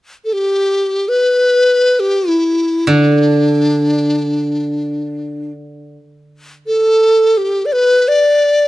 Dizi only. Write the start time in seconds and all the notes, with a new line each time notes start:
0.25 A4
0.33 G4
1.08 B4
2.00 G4
2.28 E4
2.89 D4
6.67 A4
7.37 G4
7.66 D5
7.73 B4
8.08 D5